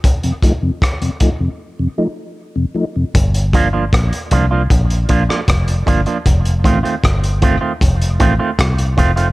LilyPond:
<<
  \new Staff \with { instrumentName = "Clean electric guitar" } { \time 4/4 \key g \minor \tempo 4 = 77 r1 | r8 <f bes d' f'>16 <f bes d' f'>16 r8 <f bes d' f'>16 <f bes d' f'>16 r8 <f bes d' f'>16 <f bes d' f'>16 r8 <f bes d' f'>16 <f bes d' f'>16 | r8 <ees a c' f'>16 <ees a c' f'>16 r8 <ees a c' f'>16 <ees a c' f'>16 r8 <ees a c' f'>16 <ees a c' f'>16 r8 <ees a c' f'>16 <ees a c' f'>16 | }
  \new Staff \with { instrumentName = "Tonewheel organ" } { \clef bass \time 4/4 \key g \minor << { r8 <f a ees'>8 r8 <f a ees'>8 r8 <f a ees'>8 r8 <f a ees'>8 | r1 | r1 | } \\ { r16 <f, c>16 r16 <f, c>16 r16 <f, c>16 r16 <f, c>16 r16 <f, c>16 r8. <f, c>16 r16 <f, c>16 | r1 | r1 | } >> }
  \new Staff \with { instrumentName = "Fingered electric bass" } { \clef bass \time 4/4 \key g \minor r1 | g,,4 bes,,16 r16 c,8 bes,,8 bes,,16 r16 f,,8 g,,16 r16 | f,,8 a,,16 r16 g,,8. r16 f,,8 a,,16 r16 c,8 f,,8 | }
  \new DrumStaff \with { instrumentName = "Drums" } \drummode { \time 4/4 <hh bd>16 hh16 <hh bd>8 <hh bd ss>16 hh16 <hh bd>8 r4 r4 | <hh bd>16 hh16 <hh bd>8 <hh bd ss>16 hh16 <hh bd>8 <hh bd>16 hh16 <hh bd>16 ss16 <hh bd ss>16 hh16 <hh bd>16 hh16 | <hh bd>16 hh16 <hh bd>16 hh16 <hh bd ss>16 hh16 <hh bd>8 <hh bd>16 hh16 <hh bd>8 <hh bd ss>16 hh16 <hh bd>16 hh16 | }
>>